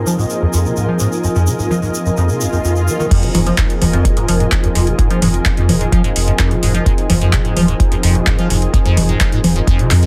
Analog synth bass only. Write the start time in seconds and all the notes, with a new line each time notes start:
3.35 F1
3.82 D#1
4.29 F1
4.75 F1
5.22 F1
5.69 D#1
6.16 F1
6.63 F1
7.10 F1
7.57 D#1
8.03 F1
8.50 F1
8.97 F1
9.44 D#1
9.91 F2